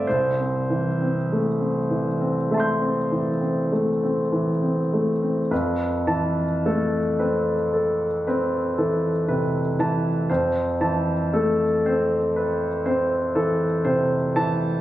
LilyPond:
<<
  \new Staff \with { instrumentName = "Grand piano" } { \time 9/8 \key f \lydian \tempo 4. = 38 << { r2 <e'' a'' c''' g'''>2~ <e'' a'' c''' g'''>8 | b'8 a''8 a'8 b'8 a'8 b'8 a'8 b'8 a''8 | c''8 a''8 a'8 c''8 b'8 c''8 a'8 c''8 a''8 | } \\ { c''2. r4. | r1 r8 | r1 r8 | } >> }
  \new Staff \with { instrumentName = "Grand piano" } { \time 9/8 \key f \lydian c,16 c'16 e16 c'16 a16 c'16 e16 c'16 a16 c'16 e16 c'16 a16 c'16 e16 c'16 a16 c'16 | f,8 e8 a8 c'8. r16 c'8 e8 c8 e8 | f,8 e8 a8 c'8. r16 c'8 e8 c8 e8 | }
>>